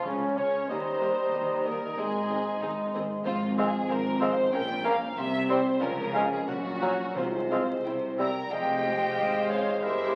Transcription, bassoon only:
0.06 C#3
0.37 C#4
0.70 G3
1.99 G#3
3.59 G#3
4.21 G#3
4.85 A#3
5.50 G3
6.15 G#3
6.82 F#3
7.51 G#3
8.19 G3
8.53 G#3

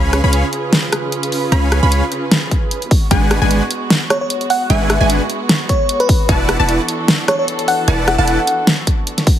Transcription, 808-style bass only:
Already playing: C#2
0.24 C#2
1.52 C#2
1.83 C#2
3.11 G#1
3.42 G#1
4.70 G#1
5.01 G#1
6.29 E1
6.60 E1
7.88 E1
8.18 E1

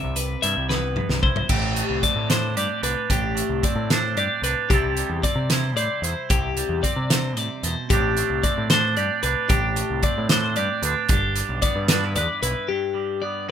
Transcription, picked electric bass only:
0.03 C2
0.44 G2
0.57 C2
1.09 C2
1.50 A1
1.90 C2
2.16 A2
2.56 G2
2.83 C2
3.10 A1
3.49 C2
3.76 A2
4.16 G2
4.42 C2
4.70 C2
5.10 E2
5.36 C3
5.76 A2
6.02 E2
6.30 C2
6.69 E2
6.96 C3
7.36 A2
7.63 E2
7.90 A1
8.30 C2
8.58 A2
8.97 G2
9.23 C2
9.50 A1
9.90 C2
10.18 A2
10.58 G2
10.82 D2
11.09 G1
11.49 B1
11.76 G2
12.16 E2
12.42 B1

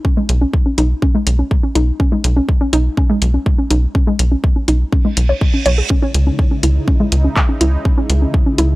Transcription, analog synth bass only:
0.29 B1
0.78 B1
1.27 B1
1.75 B1
2.24 B1
2.73 B1
3.22 B1
3.71 B1
4.19 B1
4.68 B1
5.17 B1
5.66 B1
6.14 C#2
6.63 C#2
7.12 C#2
7.61 C#2
8.10 C#2
8.58 C#2

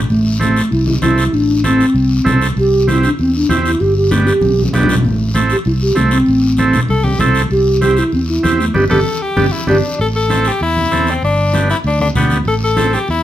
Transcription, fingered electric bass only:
0.10 A1
0.72 C2
1.02 C2
1.33 A1
1.94 C2
2.26 C2
2.56 C2
3.19 E2
3.50 E2
3.81 G1
4.43 B1
4.73 B1
5.04 A1
5.66 C2
5.96 C2
6.28 A1
6.89 C2
7.20 C2
7.50 C2
8.13 E2
8.44 E2
8.75 G1
8.91 G1
9.37 G1
9.69 G1
9.99 A1
10.61 E2
10.92 E2
11.23 G1
11.84 D2
12.16 D2
12.46 A1
13.09 E2

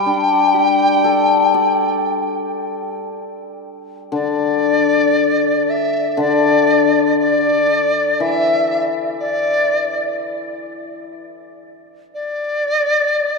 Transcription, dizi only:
Already playing: G5
4.14 D5
5.70 E5
6.21 D5
7.19 D5
8.21 E5
9.20 D5
12.14 D5

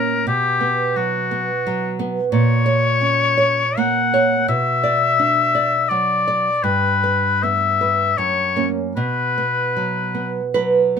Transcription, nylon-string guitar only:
Already playing: A#2 A#3 C#4
0.27 B2
0.61 B3
0.96 F#3
1.31 B3
1.67 F#3
1.99 B3
2.32 A#2
2.66 C#5
3.01 C#4
3.37 C#5
3.77 A#3
4.14 C#5
4.48 B2
4.83 D5
5.19 D4
5.55 D5
5.91 F#3
6.27 D5
6.64 G2
7.04 B4
7.43 B3
7.81 B4
8.18 F#2
8.56 A#3 C#4
8.97 B2
9.38 B3
9.77 F#3
10.14 B3
10.54 F#3 B4
10.97 B3

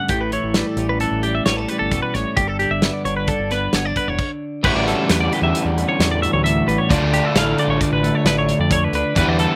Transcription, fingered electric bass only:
0.09 A1
0.43 A1
0.77 A1
1.11 A1
1.46 A1
1.81 G1
2.14 A1
2.37 G1
2.71 G1
3.05 G1
3.39 G1
3.73 G1
4.07 E1
4.64 A1
4.75 A1
5.10 E2
5.42 E2
5.65 E2
5.99 E2
6.34 D2
6.68 A1
6.90 D2
7.01 D2
7.35 A1
7.67 A1
7.92 A1
8.25 A1
8.59 F2
8.93 D2
9.16 E2
9.27 E2

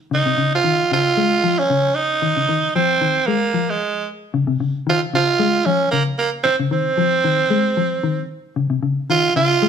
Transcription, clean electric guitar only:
0.11 C#3
0.26 C3
0.37 C#3
0.64 D#3
0.92 C#3
1.17 G#3
1.44 F3
1.70 C#3
2.22 D#3
2.37 C#3
2.49 D#3
2.76 F3
3.01 D#3
3.28 G#3
3.54 F3
4.34 C#3
4.47 C3
4.60 C#3
4.87 D#3
5.13 C#3
5.39 G#3
5.66 F3
5.93 C#3
6.45 muted clean electric guitar stroke
6.60 C#3
6.71 D#3
6.98 F3
7.24 D#3
7.50 G#3
7.77 F3
8.03 D#3
8.56 C#3
8.70 C3
8.83 C#3
9.10 D#3
9.36 C#3
9.62 G#3

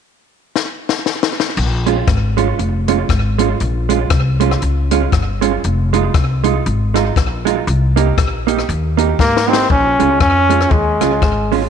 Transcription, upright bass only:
1.57 A#1
2.07 G#1
2.59 F1
3.09 G#1
3.61 A#1
4.11 C2
4.62 C#2
5.13 G1
5.64 F1
6.14 C2
6.66 G#1
7.17 A#1
7.67 C2
8.18 A#1
8.69 D#2
9.19 G#1
9.70 A#1
10.00 C#2
10.20 F2
10.71 D#2
11.01 C#2
11.22 G#1

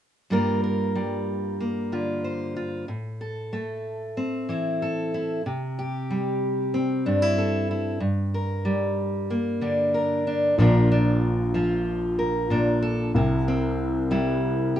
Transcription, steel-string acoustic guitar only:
0.30 G2 G3 A#3 F4 A#4
0.64 A#4
0.95 G3
1.60 A#3
1.92 D3 F4
2.24 C5
2.56 F4
2.88 A2
3.21 A4
3.53 A3
4.17 C4
4.49 E3 E4
4.82 A4
5.14 E4
5.46 C3
5.79 G4
6.11 G3
6.74 C4
7.06 G2 D4
7.22 E4
7.38 A4
7.71 E4
8.00 G2
8.34 A#4
8.65 G3
9.30 A#3
9.61 D3 D4
9.94 A#4
10.27 D4
10.58 A#2 F3 D4 F4 A#4
10.92 D4
11.54 F3 F4
12.19 A#4
12.50 A#2 D4
12.82 A4
13.16 C3 E4
13.48 C4
14.11 G3 E4
14.76 G4

